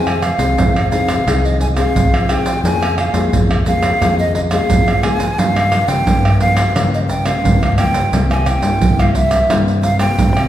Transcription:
Already playing: fingered electric bass F2, nylon-string guitar F3 C4 D#4 G#4, flute G#5
0.07 pandeiro, tamborim, shaker
0.22 flute F5, pandeiro, tamborim, shaker
0.38 fingered electric bass C2, nylon-string guitar C4 D#4 G#4, pandeiro, shaker, surdo
0.57 fingered electric bass F2, nylon-string guitar C3, pandeiro, shaker, surdo
0.76 pandeiro, tamborim, shaker
0.91 nylon-string guitar C4 D#4 G#4, flute F5, pandeiro, shaker
1.08 pandeiro, tamborim, shaker, surdo
1.27 fingered electric bass C2, nylon-string guitar F3 C4 D#4 G#4, pandeiro, tamborim, shaker, surdo
1.45 flute D#5, pandeiro, shaker
1.61 flute G#5, pandeiro, shaker, surdo
1.77 nylon-string guitar C4 D#4 G#4, flute F5, pandeiro, tamborim, shaker
1.95 fingered electric bass C2, nylon-string guitar C3, pandeiro, shaker, surdo
2.13 fingered electric bass F3, pandeiro, tamborim, shaker
2.29 nylon-string guitar C4 D#4 G#4, flute G5, pandeiro, tamborim, shaker
2.46 pandeiro, shaker, surdo
2.64 fingered electric bass F2, nylon-string guitar F3 A#3 C#4 G#4, flute G#5, pandeiro, shaker, surdo
2.82 pandeiro, tamborim, shaker
2.98 flute F5, pandeiro, tamborim
3.13 fingered electric bass F2, nylon-string guitar A#3 C#4 G#4, pandeiro, shaker, surdo
3.33 fingered electric bass F2, nylon-string guitar F3, pandeiro, shaker, surdo
3.51 pandeiro, tamborim, shaker
3.66 nylon-string guitar A#3 C#4 G#4, flute F5, pandeiro, shaker, surdo
3.83 pandeiro, tamborim, shaker, surdo
4.01 fingered electric bass F2, nylon-string guitar F3 A#3 C#4 G#4, pandeiro, tamborim, shaker, surdo
4.19 flute D#5, pandeiro, shaker
4.35 flute D#5, pandeiro, surdo
4.51 nylon-string guitar A#3 C#4 G#4, flute F5, pandeiro, tamborim, shaker
4.70 fingered electric bass F2, nylon-string guitar F3, pandeiro, shaker, surdo
4.88 fingered electric bass F3, pandeiro, tamborim, shaker
5.03 nylon-string guitar A#3 C#4 G#4, flute G#5, pandeiro, tamborim
5.20 pandeiro, shaker, surdo
5.38 fingered electric bass G2, nylon-string guitar G2 F3 A#3 C#4, flute F5, pandeiro, shaker, surdo
5.56 pandeiro, tamborim, shaker
5.72 pandeiro, tamborim, shaker
5.88 fingered electric bass C#3, nylon-string guitar F3 A#3 C#4, flute G5, pandeiro, shaker, surdo
6.07 fingered electric bass G2, nylon-string guitar G2, pandeiro, shaker, surdo
6.25 pandeiro, tamborim, shaker
6.40 nylon-string guitar F3 A#3 C#4, flute F5, pandeiro, surdo
6.57 pandeiro, tamborim, shaker, surdo
6.75 nylon-string guitar G2 F3 A#3 C#4, fingered electric bass C#3, pandeiro, tamborim, shaker, surdo
6.94 flute D#5, pandeiro, shaker
7.09 flute G5, pandeiro, shaker, surdo
7.25 nylon-string guitar F3 A#3 C#4, flute F5, pandeiro, tamborim, shaker
7.44 nylon-string guitar G2, fingered electric bass C#3, pandeiro, shaker, surdo
7.61 fingered electric bass C#2, pandeiro, tamborim, shaker
7.78 nylon-string guitar F3 A#3 C#4, flute G5, pandeiro, tamborim, shaker
7.94 pandeiro, shaker, surdo
8.12 fingered electric bass C2, nylon-string guitar C3 G3 A#3 E4, pandeiro, shaker, surdo
8.31 flute G#5, pandeiro, tamborim, shaker
8.46 flute G5, pandeiro, tamborim, shaker
8.62 fingered electric bass G2, nylon-string guitar G3 A#3 E4, pandeiro, shaker, surdo
8.81 fingered electric bass C2, nylon-string guitar G2, pandeiro, shaker, surdo
8.99 nylon-string guitar G3 A#3 E4, flute F5, pandeiro, tamborim, shaker
9.15 flute E5, pandeiro, shaker, surdo
9.31 pandeiro, tamborim, shaker, surdo
9.50 fingered electric bass G2, nylon-string guitar C3 G3 A#3 E4, pandeiro, tamborim, shaker, surdo
9.68 pandeiro, shaker
9.83 flute F5, pandeiro, shaker, surdo
9.99 nylon-string guitar G3 A#3 E4, flute G5, pandeiro, tamborim, shaker
10.18 fingered electric bass G2, nylon-string guitar G2, pandeiro, shaker, surdo
10.36 fingered electric bass C3, pandeiro, tamborim, shaker

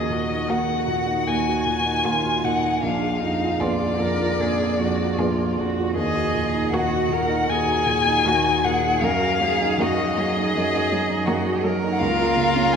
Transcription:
Already playing: grand piano D#2 F#4, cello G#4, violin D#5
0.10 grand piano A#2, cello F#4
0.30 grand piano D#4
0.49 grand piano D#2, viola A#3, violin F#4 F#5
0.68 grand piano F#4
0.88 grand piano A#2
1.06 grand piano D#4
1.27 grand piano D#2, violin G#5
1.46 grand piano F#4
1.66 grand piano A#2
1.85 grand piano D#4
2.04 grand piano D#2, viola A#3, cello F4, violin F#4
2.24 grand piano F#4
2.44 grand piano A#2, cello D#4, violin F#5
2.64 grand piano D#4
2.83 grand piano A#1, cello D4, violin F5
3.02 grand piano G#4
3.22 grand piano F2, cello D#4
3.41 grand piano F4
3.60 grand piano A#1, viola B3, cello F4, violin G#4 D5
3.79 grand piano G#4
3.99 grand piano F2, cello A#4
4.18 grand piano F4
4.39 grand piano A#1, cello G#4
4.59 grand piano G#4
4.79 grand piano F2, cello F#4
4.99 grand piano F4
5.18 grand piano A#1, viola B3, cello F4, violin G#4
5.39 grand piano G#4
5.57 grand piano F2, cello F#4
5.76 grand piano F4
5.95 grand piano D#2, cello G#4, violin D#5
6.14 grand piano F#4
6.34 grand piano A#2
6.54 grand piano D#4
6.71 grand piano D#2, viola A#3, violin F#4 F#5
6.75 cello F#4
6.90 grand piano F#4
7.09 grand piano A#2, cello A#4
7.28 grand piano D#4
7.47 grand piano D#2, cello G#4, violin G#5
7.67 grand piano F#4
7.86 grand piano A#2
8.06 grand piano D#4
8.24 grand piano D#2, viola A#3, cello F#4, violin F#4
8.44 grand piano F#4
8.64 grand piano A#2, cello G#4, violin F#5
8.83 grand piano D#4
9.01 grand piano F#2, cello A#4, violin F5
9.20 grand piano F#4
9.41 grand piano F#3, cello G#4
9.61 grand piano D#4
9.78 grand piano F#2, viola A#3, violin F#4 D#5
9.82 cello F#4
9.98 grand piano F#4
10.18 grand piano F#3, cello G#4
10.37 grand piano D#4
10.55 grand piano F#2
10.74 grand piano F#4
10.92 grand piano F#3
11.10 grand piano D#4
11.26 grand piano F#2, viola A#3, cello F#4, violin F#4
11.47 grand piano F#4
11.64 grand piano F#3, cello A#4
11.83 grand piano D#4
11.92 violin F#5
11.99 grand piano C#2, viola A#3, violin F4 F5
12.18 grand piano F4
12.36 grand piano C#3
12.55 grand piano C#4
12.73 violin G#5

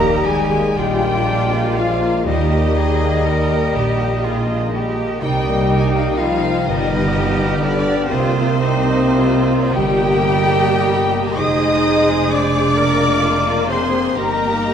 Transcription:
Already playing: double bass section D#2, timpani D#3, harp D#3 A#3 D#4 D#5, bassoon G3, french horn section A#3, cello section G4, viola section A#4, clarinet A#4, cor anglais D#5, violin section A#5, flute A#5
0.00 violin section A#3, harp A#4
0.25 violin section G3 G#5, french horn section G#3, viola section G#4, clarinet G#4, harp D#5, flute G#5
0.50 violin section A#3, harp D#6
0.75 double bass section A#1, harp A#2, french horn section G3, violin section G#3 G5, bassoon G#3, cello section F4, viola section G4, clarinet G4, cor anglais D5, flute G5
1.02 violin section A#3, harp A#3
1.29 violin section D4, harp F4
1.53 violin section A#3, harp D5
1.76 french horn section F3, violin section G#3 F5, clarinet F4, viola section F4, harp A#4, flute F5
2.01 violin section A#3, harp F5
2.25 double bass section D#2, french horn section D#3, timpani D#3, harp D#3, bassoon G3, violin section G3 D#5, clarinet D#4, viola section D#4, cello section G4, cor anglais D#5, flute D#5
2.51 violin section A#3, harp A#3
2.74 violin section G3, harp G4, cello section G#4
3.01 violin section A#3, harp D#5
3.25 violin section G3, cello section A#4, harp A#4
3.49 violin section A#3, harp G5
3.73 double bass section A#1, violin section G3, cello section G4, harp D#6
3.99 violin section A#3, harp G5
4.23 violin section G3, bassoon G#3, cello section F4, harp A#4
4.48 violin section A#3, harp D#5
4.73 violin section G3, harp G4, cello section G4
4.97 violin section A#3, harp A#3
5.21 double bass section C2, harp C3, violin section G3 G5, french horn section G3, bassoon A#3, cello section D#4, viola section G4, clarinet G4, cor anglais D#5, flute G5
5.46 harp A#3, violin section A#3
5.69 violin section G3, harp G4
5.81 violin section G#5
5.90 harp D#5, violin section G5
5.95 violin section A#3
5.99 violin section F5
6.07 violin section G5
6.16 french horn section F3, violin section G3 F5, viola section F4, clarinet F4, harp A#4, flute F5
6.43 violin section A#3, harp G5
6.66 double bass section G1, harp G2, french horn section D#3, violin section G3 D#5, bassoon B3, viola section D#4, clarinet D#4, cello section G4, flute D#5, cor anglais F5
6.93 harp B3, violin section B3
7.16 violin section G3, harp G4
7.40 violin section B3, harp F5
7.61 french horn section D3, violin section G3 D5, viola section D4, clarinet D4, harp B4, flute D5
7.87 violin section B3, harp G5
8.08 double bass section C2, french horn section C3, harp C3, violin section G3 C5, bassoon A#3, viola section C4, clarinet C4, cello section F4, flute C5, cor anglais D#5
8.34 violin section A#3, harp A#3
8.60 violin section G3, cello section D#4, harp G4
8.89 violin section A#3, harp D#5
9.17 violin section G3, cello section F4, harp A#4
9.44 violin section A#3, harp G5
9.71 double bass section G1, violin section G3 G5, french horn section G3, bassoon A#3, viola section G4, cello section G4, cor anglais D#5, flute G5, harp D#6
9.77 clarinet G4
10.00 violin section A#3, harp G5
10.28 violin section G3, harp A#4
10.56 violin section A#3, harp D#5
10.84 violin section G3, harp G4
11.10 harp A#3, violin section A#3
11.36 double bass section F1, harp F2, violin section G#3 D#6, bassoon G#3, french horn section D#4, cello section G#4, cor anglais C5, viola section D#5, clarinet D#5, flute D#6
11.62 harp G#3
11.85 harp F4
12.09 harp C5
12.31 french horn section D4, harp G#4, viola section D5, clarinet D5, violin section D6, flute D6
12.55 harp F5
12.76 harp F2, bassoon G#3, violin section A#3, cello section A#4, cor anglais A#4
13.00 harp G#3
13.22 cello section F4
13.46 harp A#4
13.69 french horn section C4, cello section G#4, harp G#4, viola section C5, clarinet C5, violin section C6, flute C6
13.93 harp F5
14.16 double bass section G1, harp G2, bassoon D#3, french horn section A#3, violin section D#4 A#5, cello section G4, viola section A#4, clarinet A#4, cor anglais A#4, flute A#5
14.41 harp A#3
14.66 harp D#4

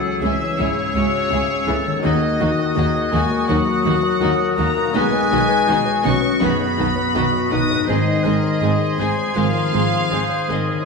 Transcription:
Already playing: grand piano C#2 C#4 G#4 C#5, harp C#3 C#4 E4 G#5, french horn section F#3, oboe G#4, clarinet A4, violin section F#5, flute E6
0.04 grand piano C#5
0.21 double bass section C#2, cello section C#2, french horn section E3, viola section G#3 C#4, grand piano C#4, violin section E4 G#4 E5, clarinet G#4
0.41 grand piano C#5
0.57 double bass section C#2, cello section C#2, grand piano G#2, french horn section C#3, viola section G#3 C#4, clarinet E4, violin section E4 G#4 C#5
0.78 grand piano C#5
0.95 double bass section C#2, cello section C#2, viola section G#3 C#4, grand piano C#4, violin section E4 G#4, clarinet F#4
1.14 grand piano C#5
1.31 double bass section C#2, cello section C#2, viola section G#3 C#4, violin section E4 G#4, clarinet G#4, grand piano G#4
1.51 grand piano C#5
1.66 double bass section C#2, cello section C#2, viola section E3 C#4, grand piano C#4, violin section E4 G#4, clarinet A4
1.86 harp D#3, grand piano C#5
1.90 harp A#3
1.94 harp D#4
1.99 viola section D#3 A#3, harp F#4
2.03 double bass section D#2, cello section D#2, grand piano D#2, french horn section D#3, violin section D#4 F#4 D#5, oboe F#4, clarinet G#4, flute D#6
2.22 grand piano A#4
2.39 double bass section D#2, cello section D#2, viola section D#3 A#3, grand piano A#3, violin section D#4 F#4, clarinet F#4
2.59 grand piano A#4
2.75 double bass section D#2, cello section D#2, viola section D#3 A#3, violin section D#4 F#4, grand piano F#4, clarinet G#4
2.96 grand piano A#4
3.11 double bass section D#2, cello section D#2, viola section D#3 A#3, french horn section G#3, grand piano A#3, violin section D#4 F#4 G#5, clarinet F#4
3.31 grand piano A#4
3.48 double bass section D#2, cello section D#2, grand piano A#2, viola section D#3 A#3, french horn section F#3, violin section D#4 F#4 F#5
3.67 grand piano A#4
3.84 double bass section D#2, cello section D#2, viola section D#3 A#3, grand piano A#3, violin section D#4 F#4
4.03 grand piano A#4
4.21 double bass section D#2, cello section D#2, viola section D#3 A#3, violin section D#4 F#4, grand piano F#4, clarinet A#4
4.39 grand piano A#4
4.58 double bass section D#2, cello section D#2, viola section D#3 A#3, grand piano A#3, french horn section A#3, violin section D#4 F#4 A#5
4.77 harp B2, grand piano A#4
4.81 harp B3
4.86 harp D#4
4.90 grand piano B1, harp F#4
4.94 double bass section B1, cello section B2, viola section D#3 B3, french horn section G#3, violin section D#4 F#4 G#5, clarinet B4
5.12 grand piano B4
5.30 double bass section B1, cello section B2, viola section D#3 B3, grand piano B3, violin section D#4 F#4
5.49 grand piano B4
5.67 double bass section B1, cello section B2, viola section D#3 B3, violin section D#4 F#4, grand piano F#4, clarinet G#4
5.85 grand piano B4
6.03 double bass section B1, cello section B2, viola section D#3 B3, grand piano B3, french horn section C#4, violin section D#4 F#4 C#6, clarinet F#4
6.22 grand piano B4
6.40 double bass section B1, grand piano F#2, cello section B2, viola section D#3 B3, french horn section B3, violin section D#4 F#4 B5, clarinet G#4
6.60 grand piano B4
6.78 double bass section B1, cello section B2, viola section D#3 B3, grand piano B3, violin section D#4 F#4
6.96 grand piano B4
7.14 double bass section B1, cello section B2, viola section D#3 B3, violin section D#4 F#4, grand piano F#4, clarinet F#4
7.33 grand piano B4
7.51 double bass section B1, cello section B2, viola section D#3 B3, grand piano B3, violin section D#4 F#4 D#6, french horn section D#4, clarinet B4
7.71 harp G#2, grand piano B4
7.75 harp C4
7.80 harp D#4
7.84 french horn section D#3, viola section G#3, harp G#4, oboe G#4, clarinet C5
7.88 double bass section G#1, cello section G#2, grand piano G#2, viola section C4, violin section D#4 G#4 D#5, flute C6
8.07 grand piano C5
8.24 double bass section G#1, cello section G#2, viola section G#3 C4, grand piano C4, violin section D#4 G#4, clarinet A#4
8.43 grand piano C5
8.61 double bass section G#1, cello section G#2, viola section G#3 C4, violin section D#4 G#4, clarinet G#4, grand piano G#4
8.81 grand piano C5
8.99 double bass section G#1, cello section G#2, french horn section G#3, viola section G#3 C4, grand piano C4, violin section D#4 G#4 G#5, clarinet C5
9.35 double bass section G#1, cello section G#2, grand piano D#3, french horn section F3, viola section G#3 C4, violin section D#4 G#4 F5, clarinet A#4
9.54 grand piano C5
9.73 double bass section G#1, cello section G#2, viola section G#3 C4, grand piano C4, violin section D#4 G#4, clarinet G#4
9.92 grand piano C5
10.09 double bass section G#1, cello section G#2, viola section G#3 C4, violin section D#4 G#4, grand piano G#4, clarinet C5
10.29 grand piano C5
10.48 double bass section G#1, cello section G#2, french horn section D#3, viola section G#3 C4, grand piano C4, violin section D#4 G#4 D#5, clarinet A#4
10.68 harp C#3, grand piano C5
10.80 harp E4

